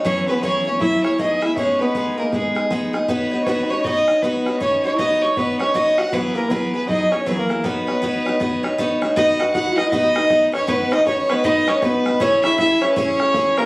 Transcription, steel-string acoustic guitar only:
X:1
M:4/4
L:1/8
Q:"Swing" 1/4=158
K:B
V:1 name="Steel-string acoustic guitar"
[E,F,B,EG] [B,EG] [E,F,B,EG] [B,EG] [F,B,EG] [B,EG] [E,F,B,EG] [B,EG] | [G,B,DG] [B,DG] [G,B,DG] [B,DG] [G,B,DG] [B,DG] [G,B,DG] [B,DG] | [B,DFc] [DFc] [B,DFc] [DFc] [B,DFc] [DFc] [B,DFc] [DFc] | [B,DFc] [DFc] [B,DFc] [DFc] [B,DFc] [DFc] [B,DFc] [DFc] |
[E,F,B,EG] [B,EG] [E,F,B,EG] [B,EG] [F,B,EG] [B,EG] [E,F,B,EG] [B,EG] | [B,DFc] [DFc] [B,DFc] [DFc] [B,DFc] [DFc] [B,DFc] [DFc] | [B,DFB] [DFB] [B,DFB] [DFB] [B,DFB] [DFB] [B,DFB] [DFB] | [B,DFB] [DFB] [B,DFB] [DFB] [B,DFB] [DFB] [B,DFB] [DFB] |
[CEGc] [EGc] [CEGc] [EGc] [CEGc] [EGc] [CEGc] [EGc] |]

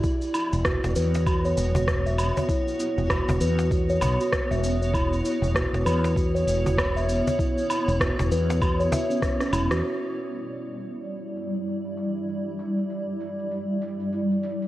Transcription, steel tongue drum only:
X:1
M:4/4
L:1/16
Q:"Swing 16ths" 1/4=98
K:Edor
V:1 name="Steel tongue drum"
E z E z F z B z F c z F2 e2 c | E z E z F z B z F c z F2 e2 c | E z E z F z B z F c z F2 e2 c | E z E z F z B z F c e C z C E F |
z16 | z16 |]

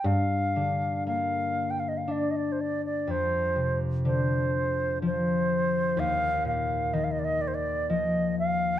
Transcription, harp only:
X:1
M:3/4
L:1/8
Q:1/4=62
K:Gm
V:1 name="Harp" clef=bass
G,, D, B,2 D2 | F,, C, D,2 F,2 | E,, B,, E,2 F,2 |]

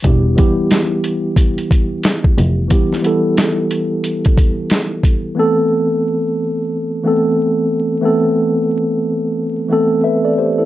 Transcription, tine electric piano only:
X:1
M:4/4
L:1/16
Q:"Swing 16ths" 1/4=90
K:Ephr
V:1 name="Tine electric piano"
z16 | z16 | z16 | z12 [Be] [Ad] [Gc] [EA] |]
V:2 name="Tine electric piano"
[E,G,B,EG]2 [E,G,B,EG]6 z8 | [E,G,B,EG]2 [E,G,B,EA]6 z8 | [E,A,B,CA]6 z4 [E,A,B,CA]4 z2 | [E,A,B,CA]6 z4 [E,A,B,CA]4 z2 |]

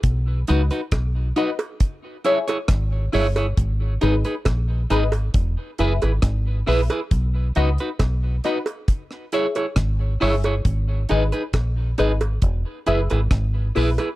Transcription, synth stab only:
X:1
M:4/4
L:1/16
Q:1/4=68
K:B
V:1 name="Synth stab"
z2 [DFBd] z3 [DFBd] z3 [EGce] z3 [EGce] z | z2 [DGBd] z3 [DGBd] z3 [EGBe] z3 [EGBe] z | z2 [DFBd] z3 [DFBd] z3 [EGce] z3 [EGce] z | z2 [DGBd] z3 [DGBd] z3 [EGBe] z3 [EGBe] z |]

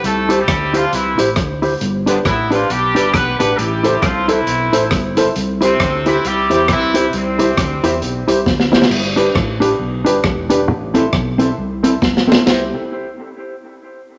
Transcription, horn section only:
X:1
M:4/4
L:1/16
Q:"Swing" 1/4=135
K:C
V:1 name="Horn section"
[A,EA]3 [G,EG]3 [F,DF]2 [E,CE]4 z4 | z2 [D,B,D]2 [E,B,E]2 [F,DF]2 [G,DG]2 [G,EG]2 [B,GB]2 [B,GB]2 | [G,EG]4 [F,CF]2 [E,CE]8 z2 | z2 [C,A,C]4 [E,CE]2 [G,EG]2 [G,EG]2 [E,CE]4 |
[C,G,C]12 z4 | z16 | z16 | z16 |]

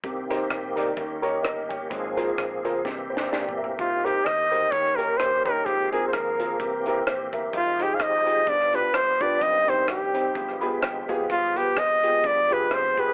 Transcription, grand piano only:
X:1
M:4/4
L:1/8
Q:"Swing" 1/4=128
K:Cm
V:1 name="Grand piano"
z [EGBc] z [EGBd] z [EGB_d] [Be] [dg]- | [_dg] [FABc] z [FABc] z [Gc] [G=d] [B=e]- | [B=e] [_EGBc] z [EGBc] z [EGB_d] z [EGBd] | z [CFAB] z [CFAB] z [C=EGB] [Gc] [B=e]- |
[B=e] [_EFGA] z [EFGA] z [DFG=B] z [DFGB] | z [CEGc] z [CEGc] z [=B,FGA=b] g [B,FGAf] | z [=B,FG=B] z [B,FGA] z [B,FGA] z [B,FGA] |]
V:2 name="Grand piano" clef=bass
C,3 z E,3 z | A,,3 z C,3 z | C,3 z E,3 z | A,,3 z C,3 z |
z4 G,,3 z | G,,3 z G,,3 z | z4 G,,3 z |]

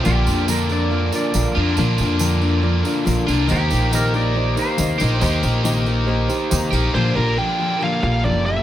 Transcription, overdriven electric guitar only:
X:1
M:4/4
L:1/8
Q:1/4=139
K:Bblyd
V:1 name="Overdriven electric guitar"
[B,,D,B,DF]6- [B,,D,B,DF] [B,,D,B,DF] | [B,,D,B,DF]6- [B,,D,B,DF] [B,,D,B,DF] | [_E,B,_EG]6- [E,B,EG] [E,B,EG] | [_E,B,_EG]6- [E,B,EG] [E,B,EG] |
[B,,D,B,DF]8 |]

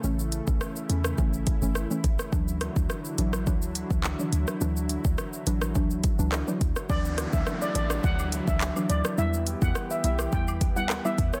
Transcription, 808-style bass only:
X:1
M:4/4
L:1/16
Q:1/4=105
K:D
V:1 name="808-style bass" clef=bass
A,,,3 A,,, z2 E,,2 A,,,3 G,,,2 z A,,, z | D,,3 D,, z2 A,,,2 D,,3 C,,2 z D,, z | D,,3 D,, z2 A,,,2 D,,3 C,,2 z D,, z | D,,3 D,, z2 A,,,2 D,,3 C,,2 z D,, z |
E,,3 E,, z2 B,,,2 E,,3 D,,2 z E,, z |]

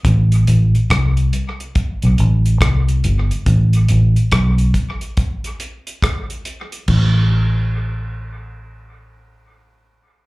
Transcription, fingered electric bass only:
X:1
M:4/4
L:1/16
Q:"Swing 16ths" 1/4=70
K:Am
V:1 name="Fingered electric bass" clef=bass
A,,,2 A,,, z C,,2 z3 B,,, A,,,2 C,,2 G,,, z | A,,,2 A,,, z B,,,2 z8 z2 | A,,,16 |]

